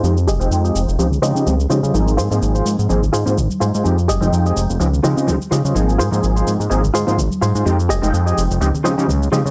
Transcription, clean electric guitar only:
X:1
M:4/4
L:1/16
Q:"Swing 16ths" 1/4=126
K:Ab
V:1 name="Clean electric guitar"
z2 [GAe]2 z [GAe] z4 [FGce]2 z2 [FGce]2 | z2 [FAc]2 z [FAc] z4 [FAc]2 z2 [FAc]2 | z2 [GAe]2 z [GAe] z4 [FGce]2 z2 [FGce]2 | z2 [FAc]2 z [FAc] z4 [FAc]2 z2 [FAc]2 |
z2 [GAe]2 z [GAe] z4 [FGce]2 z2 [FGce]2 |]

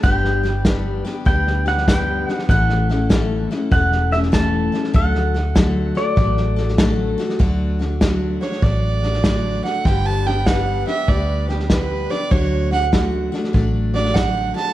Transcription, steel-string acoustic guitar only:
X:1
M:4/4
L:1/8
Q:"Swing" 1/4=98
K:D
V:1 name="Steel-string acoustic guitar"
[G,,D,G,B,DG] [G,B,DG] [G,,D,G,B,DG] [G,B,DG] [G,B,DG] [G,B,DG] [G,,D,G,B,DG] [G,B,DG] | [A,,E,A,CEA] [A,CEA] [A,,E,A,CEA] [A,CEA] [A,CEA] [A,CEA] [A,,E,A,CEA] [A,CEA] | [D,F,A,FA] [A,FA] [D,F,A,FA] [A,FA] [F,A,FA] [A,FA] [D,F,A,FA] [A,FA] | [D,F,A,DF] [A,DF] [D,F,A,DF] [A,DF] [F,A,DF] [A,DF] [D,F,A,DF] [A,DF] |
[G,,D,G,B,DG] [G,B,DG] [G,,D,G,B,DG] [G,B,DG] [G,B,DG] [G,B,DG] [G,,D,G,B,DG] [G,B,DG] | [D,F,A,DF] [A,DF] [D,F,A,DF] [A,DF] [F,A,DF] [A,DF] [D,F,A,DF] [A,DF] |]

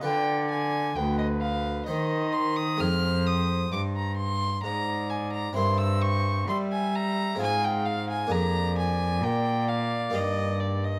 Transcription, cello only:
X:1
M:3/4
L:1/8
Q:1/4=65
K:Fdor
V:1 name="Cello" clef=bass
D,2 D,,2 E,2 | F,,2 G,,2 A,,2 | G,,2 G,2 A,,2 | [K:Bbmix] F,,2 B,,2 G,,2 |]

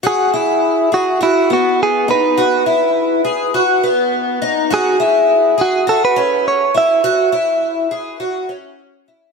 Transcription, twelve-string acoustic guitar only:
X:1
M:4/4
L:1/8
Q:1/4=103
K:E
V:1 name="Twelve-string acoustic guitar"
F E2 G F B,2 D | F E2 G F B,2 D | F E2 G F C2 E | F E2 G F C2 E |]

